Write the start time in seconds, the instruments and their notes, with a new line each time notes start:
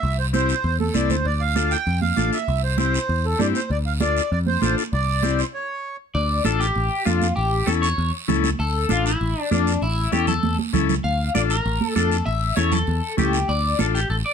Already playing: accordion E5
0.03 picked electric bass C2, high conga, long guiro
0.19 accordion C5
0.33 transistor combo organ C4 E4 G4, accordion C5, high conga, short guiro
0.49 short guiro
0.64 picked electric bass E2, high conga, long guiro
0.80 accordion A4, high conga
0.94 picked electric bass C2, transistor combo organ C4 E4 A4, accordion D5, high conga, short guiro
1.10 picked electric bass D2, accordion C5, high conga, short guiro
1.25 picked electric bass D2, accordion D5, high conga, long guiro
1.41 accordion F5
1.56 transistor combo organ D4 F4 A4, high conga, short guiro
1.71 accordion G5, short guiro
1.86 picked electric bass F2, high conga, long guiro
2.02 accordion F5, high conga
2.16 picked electric bass A1, transistor combo organ D4 F4 A4, high conga, short guiro
2.33 accordion E5, short guiro
2.48 picked electric bass C2, high conga, long guiro
2.64 accordion C5
2.77 transistor combo organ C4 E4 G4, accordion C5, high conga, short guiro
2.94 short guiro
3.09 picked electric bass E2, high conga, long guiro
3.25 accordion A4
3.39 picked electric bass G2, transistor combo organ C4 E4 G4, accordion D5, high conga, short guiro
3.55 accordion C5, short guiro
3.70 picked electric bass D2, accordion D5, high conga, long guiro
3.86 accordion F5
4.00 transistor combo organ D4 F4 A4, accordion D5, high conga, short guiro
4.17 short guiro
4.32 picked electric bass F2, accordion D5, high conga, long guiro
4.46 accordion C5, high conga
4.62 picked electric bass A1, transistor combo organ D4 F4 A4, high conga, short guiro
4.78 short guiro
4.93 picked electric bass C2, accordion D5, high conga, long guiro
5.23 transistor combo organ C4 E4 G4, high conga, short guiro
5.39 accordion C5, short guiro
5.54 accordion C#5
6.15 picked electric bass D2, clean electric guitar D5, high conga, long guiro
6.45 picked electric bass A1, transistor combo organ D4 F4 A4, clean electric guitar A4, high conga, short guiro
6.60 clean electric guitar G4, short guiro
6.76 picked electric bass A1, high conga, long guiro
7.05 picked electric bass F2, transistor combo organ D4 F4 A4, clean electric guitar F4, high conga, short guiro
7.21 high conga, short guiro
7.36 picked electric bass A1, clean electric guitar G4, high conga, long guiro
7.66 picked electric bass E2, transistor combo organ C#4 E4 A4, clean electric guitar A4, high conga, short guiro
7.82 clean electric guitar C#5, short guiro
7.98 picked electric bass E2, high conga, long guiro
8.28 picked electric bass C#2, transistor combo organ C#4 E4 A4, high conga, low conga, short guiro
8.44 high conga, short guiro
8.59 picked electric bass D2, clean electric guitar A4, high conga, long guiro
8.89 picked electric bass A1, transistor combo organ D4 F4 A4, clean electric guitar F4, high conga, short guiro
9.06 clean electric guitar E4, short guiro
9.21 picked electric bass A1, high conga, long guiro
9.51 picked electric bass F2, transistor combo organ D4 F4 A4, clean electric guitar D4, high conga, short guiro
9.67 short guiro
9.82 picked electric bass A1, clean electric guitar E4, high conga, long guiro
10.12 picked electric bass E2, transistor combo organ C#4 E4 A4, clean electric guitar G4, high conga, short guiro
10.27 clean electric guitar A4, low conga, short guiro
10.43 picked electric bass E2, high conga, long guiro
10.59 high conga
10.73 picked electric bass C#2, transistor combo organ C#4 E4 A4, low conga, short guiro
10.89 low conga, short guiro
11.04 picked electric bass D2, clean electric guitar F5, high conga, long guiro
11.35 picked electric bass A1, transistor combo organ D4 F4 A4, clean electric guitar D5, high conga, short guiro
11.50 clean electric guitar A#4, short guiro
11.65 picked electric bass A1, high conga, long guiro
11.81 high conga
11.96 picked electric bass F2, transistor combo organ D4 F4 A4, clean electric guitar A4, high conga, short guiro
12.12 short guiro
12.26 picked electric bass A1, clean electric guitar E5, high conga, long guiro
12.56 picked electric bass E2, transistor combo organ C#4 E4 A4, clean electric guitar C#5, high conga, short guiro
12.72 clean electric guitar A4, low conga, short guiro
12.87 picked electric bass E2, high conga, long guiro
13.17 picked electric bass C#2, transistor combo organ C#4 E4 A4, clean electric guitar G4, high conga, low conga, short guiro
13.33 short guiro
13.49 picked electric bass D2, clean electric guitar D5, high conga, long guiro
13.78 picked electric bass A1, transistor combo organ D4 F4 A4, clean electric guitar A4, high conga, short guiro
13.95 clean electric guitar G4, short guiro
14.10 picked electric bass A1, clean electric guitar A4, high conga, long guiro
14.26 clean electric guitar D5